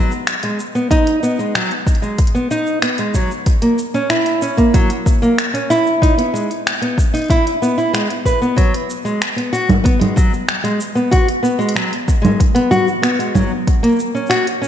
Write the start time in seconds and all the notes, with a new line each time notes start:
Already playing: F#3
0.11 shaker
0.27 finger snap, closed hi-hat, shaker
0.43 G#3, closed hi-hat, shaker
0.60 shaker
0.75 B3, shaker
0.91 D#4, kick, closed hi-hat, shaker
1.07 closed hi-hat, shaker
1.23 B3, shaker
1.39 G#3, shaker
1.55 F#3, finger snap, closed hi-hat, shaker
1.63 shaker
1.71 closed hi-hat
1.87 kick, shaker
1.95 closed hi-hat
2.02 G#3, shaker
2.18 kick, closed hi-hat, shaker
2.27 closed hi-hat
2.35 B3, shaker
2.51 D#4, shaker
2.67 shaker
2.82 B3, finger snap, closed hi-hat, shaker
2.98 G#3, closed hi-hat, shaker
3.14 F#3, kick, shaker
3.31 shaker
3.46 kick, closed hi-hat, shaker
3.62 A#3, closed hi-hat, shaker
3.78 shaker
3.94 C#4, shaker
4.10 E4, finger snap, closed hi-hat, shaker
4.26 closed hi-hat, shaker
4.42 C#4, shaker
4.57 A#3, kick, closed hi-hat, shaker
4.74 F#3, kick, closed hi-hat, shaker
4.90 closed hi-hat, shaker
5.06 kick, shaker
5.22 A#3, shaker
5.38 finger snap, closed hi-hat, shaker
5.54 C#4, closed hi-hat, shaker
5.70 E4, shaker
5.87 shaker
6.02 D#4, kick, closed hi-hat, shaker
6.18 B3, closed hi-hat, shaker
6.34 G#3, shaker
6.51 closed hi-hat, shaker
6.67 finger snap, closed hi-hat, shaker
6.75 shaker
6.82 B3, closed hi-hat
6.98 kick, shaker
7.14 D#4, closed hi-hat, shaker
7.17 closed hi-hat
7.19 closed hi-hat
7.22 closed hi-hat
7.24 closed hi-hat
7.26 closed hi-hat
7.28 E4, kick, closed hi-hat
7.31 closed hi-hat, shaker
7.47 closed hi-hat, shaker
7.62 B3, shaker
7.78 E4, shaker
7.93 G#3, finger snap, closed hi-hat, shaker
8.10 closed hi-hat
8.25 B4, kick, shaker
8.42 B3, shaker
8.56 F#3, kick, closed hi-hat, shaker
8.74 closed hi-hat, shaker
8.90 shaker
9.05 G#3, shaker
9.22 finger snap, closed hi-hat, shaker
9.36 B3, closed hi-hat, shaker
9.53 F#4, shaker
9.69 kick, closed hi-hat, low conga, shaker
9.84 B3, kick, closed hi-hat, shaker
9.99 G#3, closed hi-hat, low conga, shaker
10.16 F#3, kick, shaker
10.33 shaker
10.49 finger snap, closed hi-hat
10.64 G#3, closed hi-hat, shaker
10.80 shaker
10.95 B3, shaker
11.11 F#4, kick, closed hi-hat, shaker
11.28 closed hi-hat, shaker
11.43 B3, shaker
11.59 G#3, shaker
11.69 closed hi-hat
11.75 F#3, finger snap, shaker
11.93 closed hi-hat, shaker
12.08 kick, shaker
12.22 G#3, closed hi-hat, low conga, shaker
12.40 kick, closed hi-hat, shaker
12.55 B3, closed hi-hat, shaker
12.71 F#4, low conga, shaker
12.88 shaker
13.02 B3, finger snap, closed hi-hat, shaker
13.19 G#3, closed hi-hat, shaker
13.35 F#3, kick, low conga, shaker
13.67 kick, closed hi-hat, shaker
13.83 A#3, closed hi-hat, shaker
13.88 shaker
13.92 shaker
13.96 shaker
13.99 shaker
14.15 C#4, shaker
14.26 F#4, shaker
14.31 finger snap, closed hi-hat, shaker
14.37 shaker
14.47 closed hi-hat, shaker
14.62 C#4, shaker